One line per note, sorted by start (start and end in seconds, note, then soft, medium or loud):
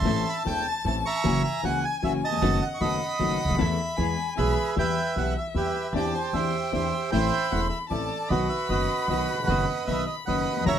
0.00 0.06 G#1 medium
0.00 0.05 G#1 medium
0.00 0.43 E5 medium
0.00 0.43 A5 medium
0.00 0.28 C6 medium
0.05 0.22 A1 medium
0.05 0.23 A1 medium
0.05 0.22 A2 medium
0.05 0.22 E3 medium
0.05 0.22 A3 medium
0.05 0.22 C4 medium
0.05 0.22 E4 medium
0.05 0.22 A4 medium
0.05 1.27 A5 loud
0.29 0.37 B5 medium
0.45 0.62 E1 medium
0.45 0.63 E1 medium
0.45 0.62 E2 medium
0.45 0.62 E3 soft
0.45 0.62 A3 soft
0.45 0.62 C4 soft
0.45 0.62 E4 soft
0.45 0.62 A4 medium
0.45 0.67 G5 medium
0.68 0.85 A5 medium
0.85 1.01 A1 medium
0.85 1.02 A1 medium
0.85 1.02 A2 soft
0.85 1.02 E3 soft
0.85 1.02 A3 soft
0.85 1.01 C4 soft
0.85 1.02 C4 soft
0.85 1.01 E4 soft
0.85 1.02 A4 medium
0.85 0.96 A5 medium
1.06 1.61 E5 medium
1.06 1.43 A#5 medium
1.06 1.42 C#6 loud
1.24 1.41 F#1 medium
1.24 1.41 F#2 medium
1.24 1.41 E3 medium
1.24 1.41 F#3 medium
1.24 1.41 A#3 medium
1.24 1.41 C#4 medium
1.24 1.41 E4 medium
1.24 1.41 F#4 medium
1.24 2.44 G#5 medium
1.44 1.64 A#5 medium
1.63 1.80 C#2 medium
1.63 1.80 C#3 medium
1.63 1.80 E3 soft
1.63 1.80 A#3 soft
1.63 1.80 C#4 soft
1.63 1.80 E4 soft
1.63 1.80 F#4 medium
1.63 1.84 F#5 medium
1.85 2.04 G#5 medium
2.03 2.20 F#1 medium
2.03 2.19 F#2 medium
2.03 2.19 E3 soft
2.03 2.19 F#3 medium
2.03 2.19 A#3 medium
2.03 2.19 A#3 soft
2.03 2.19 C#4 soft
2.03 2.19 E4 soft
2.03 2.20 F#4 medium
2.03 2.13 E5 medium
2.25 2.33 D#2 soft
2.25 2.78 D#5 medium
2.25 2.64 A5 medium
2.32 2.37 E2 medium
2.37 2.42 F2 medium
2.41 2.58 F#1 medium
2.41 2.58 F#2 medium
2.41 2.58 D#3 medium
2.41 2.58 F#3 medium
2.41 2.58 A3 medium
2.41 2.58 B3 medium
2.41 2.58 D#4 medium
2.41 2.58 F#4 medium
2.41 2.58 A4 medium
2.41 3.20 F#5 medium
2.62 2.68 F#5 medium
2.74 2.81 C#6 medium
2.81 2.97 F#1 medium
2.81 2.98 F#2 medium
2.81 2.97 D#3 soft
2.81 2.97 F#3 medium
2.81 2.98 A3 soft
2.81 2.97 B3 soft
2.81 2.98 B3 medium
2.81 2.98 D#4 soft
2.81 2.98 F#4 medium
2.81 2.98 A4 medium
2.81 3.55 D#5 medium
2.81 4.34 B5 medium
3.20 3.36 F#1 medium
3.20 3.37 F#2 medium
3.20 3.36 D#3 soft
3.20 3.36 F#3 medium
3.20 3.36 A3 soft
3.20 3.36 B3 medium
3.20 3.36 B3 soft
3.20 3.36 D#4 soft
3.20 3.37 F#4 medium
3.20 3.36 A4 medium
3.20 3.62 F#5 medium
3.44 3.49 C#2 medium
3.49 3.54 D2 medium
3.54 3.59 D#2 medium
3.58 3.75 E2 medium
3.58 3.76 E2 medium
3.58 3.75 E3 medium
3.58 3.75 A3 medium
3.58 3.75 B3 medium
3.58 3.76 B3 medium
3.58 3.76 E4 medium
3.58 3.75 A4 medium
3.58 3.76 A4 medium
3.58 3.98 E5 medium
3.97 4.15 E2 medium
3.97 4.15 E3 medium
3.97 4.15 G#3 soft
3.97 4.15 B3 medium
3.97 4.15 B3 soft
3.97 4.15 E4 medium
3.97 4.15 G#4 medium
3.97 4.39 G#5 medium
4.36 4.54 B1 medium
4.36 4.55 B1 medium
4.36 4.55 B2 medium
4.36 4.54 E3 medium
4.36 4.55 G#3 soft
4.36 4.54 B3 medium
4.36 4.55 B3 soft
4.36 4.54 E4 soft
4.36 4.54 G#4 medium
4.36 4.55 G#4 medium
4.36 4.76 G#4 medium
4.36 4.75 B4 medium
4.36 4.78 E5 medium
4.36 4.77 B5 medium
4.76 4.94 E2 medium
4.76 4.94 E3 medium
4.76 4.94 G3 medium
4.76 4.94 B3 medium
4.76 4.94 E4 medium
4.76 4.94 G4 medium
4.76 5.34 B4 medium
4.76 5.95 E5 medium
4.76 5.34 E5 medium
4.76 5.15 G5 medium
5.16 5.33 B1 medium
5.16 5.33 B1 soft
5.16 5.33 B2 soft
5.16 5.33 E3 soft
5.16 5.33 G3 soft
5.16 5.33 B3 soft
5.16 5.33 E4 soft
5.16 5.33 G4 soft
5.16 5.36 F#5 medium
5.38 5.47 E5 medium
5.54 5.72 E2 medium
5.54 5.72 E2 soft
5.54 5.72 E3 medium
5.54 5.72 G3 soft
5.54 5.72 B3 soft
5.54 5.73 B3 soft
5.54 5.73 E4 soft
5.54 5.72 G4 soft
5.54 5.93 G4 soft
5.54 5.73 G4 soft
5.54 5.93 B4 medium
5.54 5.93 E5 medium
5.93 6.11 E2 medium
5.93 6.12 E2 medium
5.93 6.12 E3 medium
5.93 6.12 C4 medium
5.93 6.12 D4 medium
5.93 6.12 E4 medium
5.93 6.12 G4 medium
5.93 6.34 G4 medium
5.93 6.14 D5 medium
5.93 6.37 A5 medium
6.14 6.34 C5 medium
6.33 6.50 E2 medium
6.33 6.51 E2 medium
6.33 6.51 E3 soft
6.33 6.51 C4 soft
6.33 6.51 D4 soft
6.33 6.51 E4 medium
6.33 6.51 G4 soft
6.33 6.73 G4 medium
6.33 6.73 C5 medium
6.33 6.71 E5 medium
6.33 7.12 G5 medium
6.72 6.90 E2 medium
6.72 6.90 E3 medium
6.72 6.90 C4 soft
6.72 6.90 D4 soft
6.72 6.90 E4 medium
6.72 6.90 G4 soft
6.72 7.11 G4 medium
6.72 7.10 C5 soft
6.72 7.10 E5 medium
7.11 7.29 A1 medium
7.11 7.29 A2 medium
7.11 7.29 E3 medium
7.11 7.29 A3 medium
7.11 7.29 C4 medium
7.11 7.29 E4 medium
7.11 7.29 A4 medium
7.11 7.68 C5 medium
7.11 7.67 E5 medium
7.11 7.52 G5 loud
7.11 7.89 B5 loud
7.51 7.68 E1 medium
7.51 7.69 E1 medium
7.51 7.68 E2 medium
7.51 7.68 E3 soft
7.51 7.68 A3 medium
7.51 7.68 A3 soft
7.51 7.68 C4 soft
7.51 7.68 E4 medium
7.51 7.69 A4 soft
7.51 7.60 F#5 medium
7.69 7.79 E5 medium
7.89 8.07 A1 medium
7.89 8.08 A1 medium
7.89 8.08 A2 medium
7.89 8.07 E3 soft
7.89 8.07 A3 soft
7.89 8.08 A3 soft
7.89 8.07 C4 soft
7.89 8.08 C4 soft
7.89 8.07 E4 soft
7.89 8.08 A4 soft
7.89 8.28 A4 medium
7.89 8.31 D5 medium
7.89 8.31 A5 medium
8.29 8.47 B1 medium
8.29 8.47 B2 medium
8.29 8.47 D#3 medium
8.29 8.47 F#3 medium
8.29 8.47 B3 medium
8.29 8.47 D#4 medium
8.29 8.47 F#4 medium
8.29 8.70 F#4 medium
8.29 8.47 F#4 medium
8.29 8.70 B4 medium
8.29 8.48 D#5 medium
8.29 9.87 B5 loud
8.49 8.68 E5 medium
8.69 8.86 F#1 medium
8.69 8.86 F#1 soft
8.69 8.86 F#2 soft
8.69 8.86 D#3 soft
8.69 8.86 F#3 soft
8.69 8.86 B3 soft
8.69 8.86 D#4 soft
8.69 8.86 F#4 soft
8.69 8.86 F#4 medium
8.69 9.09 F#4 medium
8.69 9.09 B4 medium
8.69 9.06 D#5 medium
9.08 9.25 B1 medium
9.08 9.26 B1 soft
9.08 9.26 B2 soft
9.08 9.26 D#3 soft
9.08 9.26 F#3 soft
9.08 9.26 B3 soft
9.08 9.26 D#4 soft
9.08 9.26 F#4 soft
9.08 9.65 F#4 medium
9.08 9.48 B4 soft
9.08 9.46 D#5 medium
9.34 9.39 D#1 soft
9.38 9.44 E1 medium
9.43 9.48 F1 medium
9.43 9.84 F#5 medium
9.47 9.65 F#1 medium
9.47 9.65 F#2 medium
9.47 9.65 D#3 medium
9.47 9.65 F#3 medium
9.47 9.65 B3 medium
9.47 9.65 D#4 medium
9.47 9.65 F#4 medium
9.47 10.04 B4 medium
9.47 10.05 D#5 medium
9.87 10.05 B1 soft
9.87 10.05 B1 medium
9.87 10.05 B2 medium
9.87 10.04 D#3 soft
9.87 10.04 F#3 soft
9.87 10.04 B3 soft
9.87 10.05 B3 soft
9.87 10.05 D#4 soft
9.87 10.05 F#4 soft
9.87 10.05 F#4 medium
9.87 10.06 E5 medium
9.87 10.68 B5 medium
10.06 10.16 D#5 medium
10.26 10.44 F#1 medium
10.26 10.45 F#1 medium
10.26 10.44 F#2 medium
10.26 10.44 D#3 soft
10.26 10.44 F#3 soft
10.26 10.44 B3 soft
10.26 10.45 D#4 soft
10.26 10.44 F#4 soft
10.26 10.45 F#4 medium
10.26 10.65 B4 medium
10.26 10.65 D#5 medium
10.26 10.63 F#5 medium
10.51 10.57 D#2 soft
10.57 10.62 E2 medium
10.57 10.66 F2 medium
10.65 10.79 F#1 medium
10.65 10.79 F#2 medium
10.65 10.79 E3 medium
10.65 10.79 F#3 medium
10.65 10.79 A#3 medium
10.65 10.79 C#4 medium
10.65 10.79 E4 medium
10.65 10.79 F#4 medium
10.65 10.79 C#5 medium
10.65 10.79 E5 medium
10.65 10.79 F#5 medium
10.65 10.79 A#5 loud